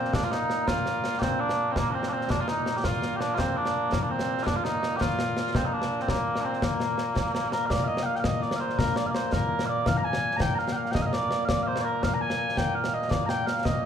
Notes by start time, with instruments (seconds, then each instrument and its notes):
Already playing: bagpipes A#2 A#3 C4
0.05 snare
0.13 bagpipes D4, concert bass drum, snare
0.24 bagpipes F4
0.31 bagpipes D#4, snare
0.50 snare
0.67 bagpipes F4, concert bass drum, snare
0.86 snare
1.04 snare
1.19 bagpipes C4 G4, concert bass drum, snare
1.40 bagpipes D4
1.49 snare
1.72 bagpipes C4
1.76 bagpipes A#3, concert bass drum, snare
1.90 bagpipes C4 D4
2.03 snare
2.08 bagpipes D4
2.12 bagpipes C4
2.21 snare
2.30 bagpipes D4, concert bass drum, snare
2.40 bagpipes F4
2.48 bagpipes D#4, snare
2.66 snare
2.76 bagpipes G4
2.84 bagpipes F4, concert bass drum, snare
2.93 snare
3.02 snare
3.16 bagpipes G4
3.20 bagpipes D4, snare
3.34 bagpipes F4
3.38 bagpipes C4, concert bass drum, snare
3.57 bagpipes D4
3.65 snare
3.92 bagpipes A#3, concert bass drum, snare
4.02 bagpipes D4
4.10 bagpipes C4
4.19 snare
4.38 snare
4.43 bagpipes D4 F4, concert bass drum, snare
4.56 bagpipes F4
4.64 bagpipes D#4, snare
4.83 snare
4.96 bagpipes G4
5.01 bagpipes F4, concert bass drum, snare
5.10 snare
5.19 snare
5.37 snare
5.55 bagpipes C4, concert bass drum, snare
5.66 bagpipes D#4
5.73 bagpipes D4
5.82 snare
6.00 bagpipes C4, snare
6.08 bagpipes A#3, concert bass drum, snare
6.36 snare
6.40 bagpipes D4
6.45 bagpipes C4
6.53 bagpipes C4, snare
6.62 bagpipes A#3, concert bass drum, snare
6.80 snare
6.98 snare
7.16 concert bass drum, snare
7.26 snare
7.35 snare
7.44 snare
7.52 bagpipes A#4, snare
7.66 bagpipes F5
7.70 bagpipes D5, concert bass drum, snare
7.84 bagpipes D#5 F5
7.97 snare
8.02 bagpipes F5 G5
8.16 bagpipes G5, snare
8.20 bagpipes F5
8.24 bagpipes D#5, concert bass drum, snare
8.42 bagpipes D5, snare
8.51 snare
8.56 bagpipes F5
8.60 bagpipes C5
8.69 snare
8.78 bagpipes A#4, concert bass drum, snare
8.96 bagpipes D5, snare
9.06 bagpipes F5
9.11 bagpipes D5
9.15 bagpipes C5, snare
9.26 bagpipes C5
9.32 bagpipes A#4, concert bass drum, snare
9.59 snare
9.66 bagpipes D5 F5
9.86 bagpipes F5, concert bass drum, snare
9.97 bagpipes A#5
10.04 bagpipes G#5
10.13 snare
10.31 snare
10.37 bagpipes A#5, concert bass drum, snare
10.41 bagpipes G5
10.54 bagpipes F5 A#5
10.59 snare
10.68 snare
10.73 bagpipes F5 G5
10.86 snare
10.91 bagpipes D#5 G5, concert bass drum, snare
11.01 bagpipes F5
11.06 bagpipes D#5
11.13 bagpipes D5, snare
11.31 snare
11.45 bagpipes D5 F5, concert bass drum, snare
11.62 bagpipes F5
11.67 bagpipes C5
11.76 snare
11.81 bagpipes A#4 D5
12.03 bagpipes F5, concert bass drum, snare
12.14 bagpipes A#5
12.21 bagpipes G#5
12.30 snare
12.49 snare
12.57 bagpipes G5, concert bass drum, snare
12.75 bagpipes F5
12.84 snare
12.94 bagpipes D#5
13.02 snare
13.10 bagpipes D5, concert bass drum, snare
13.26 bagpipes G5 A#5, snare
13.46 bagpipes F5, snare
13.65 bagpipes D#5, concert bass drum, snare